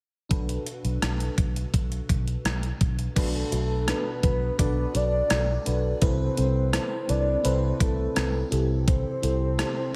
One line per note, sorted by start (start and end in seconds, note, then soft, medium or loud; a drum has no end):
0.29 0.56 B1 medium
0.29 1.34 B2 medium
0.29 3.12 D4 medium
0.29 3.12 F#4 medium
0.29 3.12 A4 medium
0.29 3.13 B4 medium
0.29 kick medium
0.29 closed hi-hat medium
0.49 closed hi-hat medium
0.67 closed hi-hat medium
0.84 0.97 B1 medium
0.84 closed hi-hat soft
1.02 1.28 B1 medium
1.02 cross-stick medium
1.02 closed hi-hat medium
1.20 closed hi-hat soft
1.38 1.64 B1 medium
1.38 kick medium
1.38 closed hi-hat medium
1.56 closed hi-hat medium
1.74 1.99 B1 medium
1.74 kick medium
1.74 closed hi-hat medium
1.92 closed hi-hat soft
2.09 2.35 B1 medium
2.09 kick medium
2.09 closed hi-hat medium
2.28 closed hi-hat soft
2.45 2.71 B1 medium
2.45 cross-stick medium
2.45 closed hi-hat medium
2.63 closed hi-hat soft
2.81 3.06 B1 medium
2.81 kick medium
2.81 closed hi-hat medium
2.99 closed hi-hat soft
3.16 3.42 B1 loud
3.16 4.19 B2 medium
3.16 3.38 D4 medium
3.16 3.38 F#4 medium
3.16 3.38 A4 medium
3.16 3.90 A4 medium
3.16 3.38 B4 medium
3.16 kick medium
3.16 closed hi-hat medium
3.16 crash medium
3.51 3.91 B1 medium
3.51 3.74 D4 medium
3.51 3.74 F#4 medium
3.51 3.74 A4 medium
3.51 3.74 B4 medium
3.51 closed hi-hat medium
3.87 4.09 D4 medium
3.87 4.09 F#4 medium
3.87 4.10 A4 medium
3.87 4.10 B4 medium
3.87 4.23 B4 medium
3.87 cross-stick medium
3.87 closed hi-hat medium
4.22 4.49 B1 medium
4.22 4.45 D4 medium
4.22 4.45 F#4 medium
4.22 4.45 A4 medium
4.22 4.45 B4 medium
4.22 4.57 B4 medium
4.22 kick medium
4.22 closed hi-hat medium
4.58 4.85 B1 medium
4.58 4.81 D4 medium
4.58 4.81 F#4 medium
4.58 4.81 A4 medium
4.58 4.97 B4 loud
4.58 4.81 D5 medium
4.58 kick medium
4.58 closed hi-hat medium
4.94 5.20 B1 medium
4.94 5.16 D4 medium
4.94 5.16 F#4 medium
4.94 5.17 A4 medium
4.94 5.17 B4 medium
4.94 5.67 D5 loud
4.94 closed hi-hat medium
5.30 5.56 B1 medium
5.30 5.52 D4 medium
5.30 5.52 F#4 medium
5.30 5.52 A4 medium
5.30 5.53 D5 medium
5.30 cross-stick loud
5.30 closed hi-hat medium
5.65 5.92 B1 medium
5.65 5.88 D4 medium
5.65 5.88 F#4 medium
5.65 5.88 A4 medium
5.65 5.88 B4 medium
5.65 closed hi-hat medium
6.01 6.28 C2 medium
6.01 7.05 C3 medium
6.01 6.24 C4 medium
6.01 6.24 E4 medium
6.01 6.24 A4 medium
6.01 6.24 B4 loud
6.01 7.11 C5 loud
6.01 kick medium
6.01 closed hi-hat medium
6.37 6.77 C2 medium
6.37 6.59 C4 medium
6.37 6.59 E4 medium
6.37 6.60 A4 medium
6.37 6.60 B4 medium
6.37 closed hi-hat medium
6.73 6.95 C4 medium
6.73 6.95 E4 medium
6.73 6.95 A4 medium
6.73 6.95 B4 medium
6.73 cross-stick loud
6.73 closed hi-hat medium
7.08 7.35 C2 medium
7.08 7.31 C4 medium
7.08 7.31 E4 medium
7.08 7.31 A4 medium
7.08 7.31 B4 medium
7.08 7.45 D5 loud
7.08 closed hi-hat medium
7.44 7.71 C2 medium
7.44 7.66 C4 medium
7.44 7.66 E4 medium
7.44 7.66 A4 medium
7.44 7.67 B4 loud
7.44 7.78 C5 loud
7.44 closed hi-hat medium
7.80 8.06 C2 medium
7.80 8.02 C4 medium
7.80 8.02 E4 medium
7.80 8.02 A4 medium
7.80 8.49 A4 medium
7.80 8.02 B4 medium
7.80 kick medium
7.80 closed hi-hat medium
8.15 8.42 C2 medium
8.15 8.38 C4 medium
8.15 8.38 E4 medium
8.15 8.38 A4 medium
8.15 8.38 B4 medium
8.15 cross-stick loud
8.15 closed hi-hat medium
8.51 9.03 C2 medium
8.51 9.55 C3 medium
8.51 9.08 C4 medium
8.51 9.08 E4 medium
8.51 9.09 G4 medium
8.51 9.09 A4 medium
8.51 closed hi-hat medium
8.88 9.96 C5 loud
8.88 kick medium
8.88 closed hi-hat medium
9.22 9.62 C2 medium
9.22 9.45 C4 medium
9.22 9.45 E4 medium
9.22 9.45 G4 medium
9.22 9.45 A4 medium
9.22 closed hi-hat medium
9.58 9.80 C4 medium
9.58 9.81 E4 medium
9.58 9.81 G4 medium
9.58 9.81 A4 medium
9.58 cross-stick loud
9.58 closed hi-hat medium